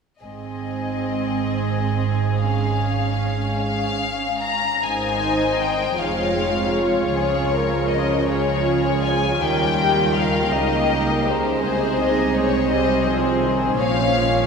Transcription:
0.23 4.59 G#1 soft
0.23 4.59 G#2 soft
0.23 2.42 C4 soft
0.23 4.59 G#4 soft
0.23 2.41 D#5 soft
2.43 4.63 C#4 soft
2.43 3.56 F5 soft
3.59 4.39 F5 medium
4.42 4.84 A#5 medium
4.83 5.94 G#1 soft
4.83 5.95 G#2 soft
4.83 5.95 D#3 soft
4.83 5.95 D#4 soft
4.83 5.94 C5 soft
4.83 5.94 D#5 soft
4.83 5.60 G#5 medium
5.59 5.98 G5 medium
5.98 7.13 F1 soft
5.98 7.14 F2 soft
5.98 7.14 G#3 soft
5.98 8.27 F4 soft
5.98 7.13 C#5 soft
5.98 6.75 F5 medium
6.75 7.90 C#5 medium
7.13 9.38 C#2 soft
7.13 9.38 C#3 soft
7.13 9.39 F3 soft
7.13 7.53 G#4 soft
7.13 8.26 C#5 soft
7.53 7.89 A#4 soft
7.90 8.27 A#4 soft
7.90 8.28 D#5 soft
8.28 10.50 F4 soft
8.28 9.42 G#4 soft
8.28 9.40 C#5 soft
8.28 9.03 C#5 medium
9.04 9.42 G#5 medium
9.42 10.51 D#2 soft
9.42 10.52 D#3 soft
9.42 10.52 G3 soft
9.42 10.51 G4 soft
9.42 11.62 A#4 soft
9.42 10.17 G5 medium
10.18 10.54 F5 medium
10.52 11.61 C#2 soft
10.52 11.60 C#3 soft
10.52 11.64 A#3 soft
10.52 11.61 D#4 soft
10.52 11.60 G4 soft
10.52 11.26 D#5 medium
11.27 12.36 C5 medium
11.62 13.79 C2 soft
11.62 13.79 C3 soft
11.62 12.69 G#3 soft
11.62 12.69 D#4 soft
11.62 12.68 G#4 soft
11.62 11.98 C5 soft
12.00 12.35 D#5 soft
12.35 13.79 C5 soft
12.35 12.71 C#5 medium
12.71 13.07 G3 medium
12.71 13.79 C4 soft
12.71 13.77 G#4 soft
12.71 13.06 D#5 medium
13.07 13.43 F3 medium
13.44 13.79 D#3 medium
13.79 14.47 A#1 medium
13.79 14.47 A#2 medium
13.79 14.47 F3 soft
13.79 14.47 C#4 medium
13.79 14.47 C#5 medium
13.79 14.47 F5 medium

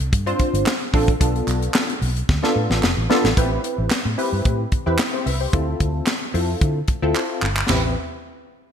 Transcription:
0.00 closed hi-hat soft
0.13 0.32 G2 medium
0.13 kick loud
0.13 closed hi-hat loud
0.26 0.71 C4 loud
0.26 0.71 D4 medium
0.26 0.71 F4 loud
0.26 0.71 C5 loud
0.26 closed hi-hat soft
0.39 kick medium
0.39 closed hi-hat medium
0.54 0.63 G1 loud
0.54 closed hi-hat medium
0.66 snare loud
0.66 clap loud
0.66 clap medium
0.93 1.13 A1 medium
0.93 1.12 C4 loud
0.93 1.12 D4 loud
0.93 1.12 F4 medium
0.93 1.12 A4 loud
0.93 kick loud
0.93 open hi-hat medium
1.08 kick loud
1.08 closed hi-hat medium
1.20 1.40 B1 loud
1.20 1.92 B3 medium
1.20 1.93 D4 medium
1.20 1.93 F4 medium
1.20 1.93 A4 medium
1.20 kick loud
1.20 closed hi-hat loud
1.36 closed hi-hat soft
1.47 1.67 B1 loud
1.47 clap medium
1.47 closed hi-hat medium
1.62 closed hi-hat soft
1.74 snare loud
1.74 clap medium
1.90 closed hi-hat soft
2.02 2.21 B1 loud
2.02 open hi-hat medium
2.17 closed hi-hat medium
2.29 2.39 D2 loud
2.29 kick loud
2.29 snare medium
2.43 2.87 B3 loud
2.43 2.87 D4 medium
2.43 2.87 F4 medium
2.43 2.87 A4 loud
2.43 snare medium
2.56 2.66 A2 medium
2.70 2.79 A1 medium
2.70 snare medium
2.83 2.93 F1 loud
2.83 snare loud
2.83 clap medium
2.97 3.06 A1 medium
3.09 3.28 B3 loud
3.09 3.28 D4 medium
3.09 3.28 F4 loud
3.09 3.29 A4 loud
3.09 snare loud
3.24 3.33 A1 medium
3.24 snare loud
3.37 3.57 A1 loud
3.37 3.91 C4 medium
3.37 3.91 E4 medium
3.37 3.91 G4 medium
3.37 3.91 B4 medium
3.37 kick loud
3.37 closed hi-hat loud
3.64 closed hi-hat medium
3.78 3.87 A1 medium
3.91 snare loud
3.91 clap medium
3.91 closed hi-hat loud
4.05 4.14 A2 medium
4.18 4.63 C4 medium
4.18 4.63 E4 medium
4.18 4.63 G4 medium
4.18 4.63 B4 medium
4.18 open hi-hat medium
4.33 4.42 G2 medium
4.45 4.65 A2 medium
4.45 kick loud
4.45 closed hi-hat loud
4.72 kick medium
4.72 closed hi-hat medium
4.86 4.96 E2 medium
4.86 5.30 C4 medium
4.86 5.31 E4 medium
4.86 4.99 G4 medium
4.86 4.99 B4 loud
4.99 snare loud
4.99 clap loud
4.99 clap medium
4.99 closed hi-hat loud
5.14 5.26 G4 medium
5.14 5.26 C5 medium
5.26 5.46 C2 medium
5.26 5.40 B4 medium
5.26 5.40 E5 medium
5.26 open hi-hat medium
5.41 5.67 G4 medium
5.41 5.66 C5 medium
5.53 5.73 D2 loud
5.53 6.07 C4 medium
5.53 6.07 E4 medium
5.53 6.07 F4 medium
5.53 6.07 A4 medium
5.53 kick loud
5.53 closed hi-hat loud
5.80 6.00 D2 loud
5.80 kick medium
5.80 closed hi-hat medium
6.06 snare loud
6.06 clap medium
6.06 closed hi-hat medium
6.34 6.54 F2 medium
6.34 6.79 C4 medium
6.34 6.79 E4 medium
6.34 6.80 F4 medium
6.34 6.80 A4 medium
6.34 open hi-hat medium
6.61 6.81 D3 loud
6.61 kick loud
6.61 closed hi-hat loud
6.88 kick medium
6.88 closed hi-hat medium
7.02 7.12 D2 medium
7.02 7.47 C4 loud
7.02 7.47 E4 medium
7.02 7.47 F4 medium
7.02 7.47 A4 loud
7.15 clap medium
7.42 7.62 G1 medium
7.42 clap medium
7.57 clap loud
7.69 7.94 A1 medium
7.69 7.95 C4 medium
7.69 7.95 E4 medium
7.69 7.95 G4 medium
7.69 7.95 B4 medium
7.69 snare loud
7.69 clap medium
7.69 floor tom loud
7.69 china medium

